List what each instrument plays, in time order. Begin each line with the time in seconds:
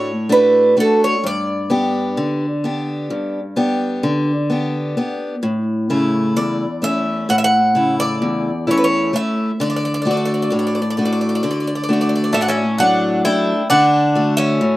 Already playing: steel-string acoustic guitar A2 A3 D4 F#4, bouzouki C#5
0.29 steel-string acoustic guitar A3 D4 F#4, bouzouki B4
0.77 steel-string acoustic guitar A3 D4 F#4, bouzouki A4
1.04 bouzouki C#5
1.24 steel-string acoustic guitar G2, bouzouki D5
1.70 steel-string acoustic guitar B3 D4 G4
2.17 steel-string acoustic guitar D3
2.64 steel-string acoustic guitar B3 D4 G4
3.10 steel-string acoustic guitar G2
3.56 steel-string acoustic guitar B3 D4 G4
4.03 steel-string acoustic guitar D3
4.50 steel-string acoustic guitar B3 D4 G4
4.97 steel-string acoustic guitar B3 D4 G4
5.43 steel-string acoustic guitar A2
5.90 steel-string acoustic guitar C#3 A3 E4
6.36 steel-string acoustic guitar E2, bouzouki D5
6.82 steel-string acoustic guitar A3 C#4 E4, bouzouki E5
7.29 steel-string acoustic guitar A2, bouzouki F#5
7.38 bouzouki E5
7.44 bouzouki F#5
7.75 steel-string acoustic guitar C#3 A3 E4
8.00 bouzouki D5
8.22 steel-string acoustic guitar E2
8.67 steel-string acoustic guitar A3 C#4 E4, bouzouki C#5
8.78 bouzouki B4
8.84 bouzouki C#5
9.13 steel-string acoustic guitar A3 C#4 E4, bouzouki E5
9.60 steel-string acoustic guitar D3, bouzouki D5
9.70 bouzouki D5
9.76 bouzouki D5
9.85 bouzouki D5
9.94 bouzouki D5
10.02 steel-string acoustic guitar A3 D4, bouzouki D5
10.07 steel-string acoustic guitar F#4
10.11 bouzouki D5
10.17 bouzouki D5
10.25 bouzouki D5
10.34 bouzouki D5
10.42 bouzouki D5
10.50 steel-string acoustic guitar A2, bouzouki D5
10.59 bouzouki D5
10.67 bouzouki D5
10.75 bouzouki D5
10.82 bouzouki D5
10.90 bouzouki D5
10.97 steel-string acoustic guitar A3 D4 F#4, bouzouki D5
11.05 bouzouki D5
11.13 bouzouki D5
11.21 bouzouki D5
11.29 bouzouki D5
11.35 bouzouki D5
11.43 steel-string acoustic guitar D3, bouzouki D5
11.51 bouzouki D5
11.60 bouzouki D5
11.67 bouzouki D5
11.75 bouzouki D5
11.84 bouzouki D5
11.89 steel-string acoustic guitar A3 D4 F#4
11.93 bouzouki D5
12.01 bouzouki D5
12.09 bouzouki D5
12.16 bouzouki D5
12.24 bouzouki D5
12.33 steel-string acoustic guitar A2, bouzouki A3 D5 E5
12.41 bouzouki D4 D5 F#5
12.48 bouzouki C#4 D5 E5
12.78 steel-string acoustic guitar F#3 A3 D4, bouzouki D4 F#5
13.25 steel-string acoustic guitar A3 D4 A4, bouzouki E4 G5
13.70 steel-string acoustic guitar D3, bouzouki D4 F#5
14.15 steel-string acoustic guitar A3 F#4
14.37 bouzouki C#4 E5
14.61 steel-string acoustic guitar A2